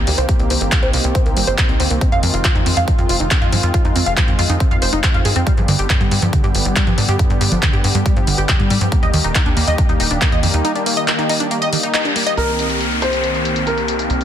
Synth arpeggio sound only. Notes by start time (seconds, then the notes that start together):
0.07 G3
0.18 C5
0.29 C3
0.39 C4
0.50 C4
0.61 A#3
0.72 G3
0.83 C5
0.93 C3
1.04 C4
1.15 C4
1.26 A#3
1.37 G3
1.47 C5
1.58 C3
1.69 C4
1.80 C4
1.91 A#3
2.01 C4
2.12 F5
2.23 F3
2.34 F4
2.45 F4
2.55 D#4
2.66 C4
2.77 F5
2.88 F3
2.99 F4
3.09 F4
3.20 D#4
3.31 C4
3.42 F5
3.52 F3
3.63 F4
3.74 F4
3.85 D#4
3.96 C4
4.06 F5
4.17 F3
4.28 F4
4.39 F4
4.50 D#4
4.60 C4
4.71 F5
4.82 C5
4.93 D#4
5.04 C4
5.14 F5
5.25 G#4
5.36 C4
5.47 G3
5.57 F3
5.68 D3
5.79 G4
5.90 G2
6.01 G3
6.11 G3
6.22 F3
6.33 D3
6.44 G4
6.55 G2
6.65 G3
6.76 G3
6.87 F3
6.98 D3
7.08 G4
7.19 G2
7.30 G3
7.41 G3
7.52 F3
7.62 D3
7.73 G4
7.84 G2
7.95 G3
8.06 G3
8.16 F3
8.27 D3
8.38 G4
8.49 G2
8.60 G3
8.70 G3
8.81 F3
8.92 A#3
9.03 D#5
9.14 D#3
9.24 D#4
9.35 D#4
9.46 D4
9.57 A#3
9.67 D#5
9.78 D#3
9.89 D#4
10.00 D#4
10.11 D4
10.21 A#3
10.32 D#5
10.43 D#3
10.54 D#4
10.65 D#4
10.75 D4
10.86 A#3
10.97 D#5
11.08 D#3
11.19 D#4
11.29 D#4
11.40 D4
11.51 A#3
11.62 D#5
11.73 D#3
11.83 D#4
11.94 D#4
12.05 D4
12.16 A#3
12.27 D#5